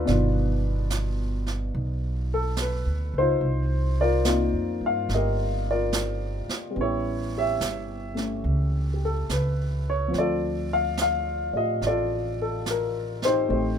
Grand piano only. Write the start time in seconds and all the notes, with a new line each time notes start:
Already playing: D4 B4
0.05 B2 D#3 D5
0.10 F4
2.34 A4
2.62 B4
3.18 D#4 F4 C5
4.01 F4 A#4 D5
4.25 A#3 C4 D#4 F4
4.86 F5
5.14 G4 A#4 D#5
5.71 F4 A#4 D5
6.71 G3 B3
6.77 C#4 E4 C#5
6.82 G4
7.38 G4 C#5 E5
8.15 A3 C#4
8.94 G4
9.05 A4
9.33 B4
9.90 C#5
10.08 F3 C4
10.18 F4 A4 D5
10.73 F5
11.02 F5
11.53 F4 G4 D5 D#5
11.87 F4 A4 D5
12.42 A4
12.70 A#4
13.25 D#4 G4 C5
13.48 A3 C4 D#4
13.53 G4